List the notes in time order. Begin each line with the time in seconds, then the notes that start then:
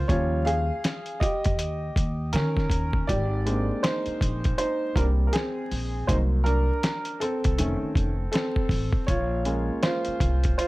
Already playing: C5
0.08 D#2 F3 G3 C#4 F4 C#5, kick, closed hi-hat
0.45 G#4 F5, closed hi-hat
0.84 snare, closed hi-hat
1.06 closed hi-hat
1.20 G4 D#5, kick, closed hi-hat
1.44 F2, kick, closed hi-hat
1.59 D#2, closed hi-hat
1.96 D#2, kick, closed hi-hat
2.33 D#3 C#4 A#4, snare, closed hi-hat
2.57 kick, snare
2.70 D#2, kick, closed hi-hat
2.93 kick
3.07 G#1 G4 D5, kick, closed hi-hat
3.46 G#3 A#3 C4 D4, closed hi-hat
3.83 D#4 C5, snare, closed hi-hat
4.06 muted upright bass stroke, closed hi-hat
4.21 A#1, kick, closed hi-hat
4.44 kick, closed hi-hat
4.58 D#4 C5, closed hi-hat
4.96 C2 G3 A#3 C4 D4 A#4, kick, closed hi-hat
5.27 A#4
5.33 C4 G#4, snare, closed hi-hat
5.71 A#1, open hi-hat
6.07 C2 F#3 A#3 D#4 C5, kick, closed hi-hat
6.44 D4 A#4, closed hi-hat
6.83 snare, closed hi-hat
7.05 closed hi-hat
7.20 C4 A4, closed hi-hat
7.44 C2, kick, closed hi-hat
7.58 F1 D#3 A3 C#4, closed hi-hat
7.82 muted upright bass stroke
7.95 F1, kick, closed hi-hat
8.32 C4 A4, snare, closed hi-hat
8.56 kick
8.69 A1, kick, open hi-hat
8.93 kick
9.07 A#1 F4 C#5, kick, closed hi-hat
9.45 G#3 A#3 C#4, closed hi-hat
9.83 F4 C5, snare, closed hi-hat
10.05 muted upright bass stroke, closed hi-hat
10.20 C2, kick, closed hi-hat
10.43 kick, closed hi-hat
10.58 F4 C5, closed hi-hat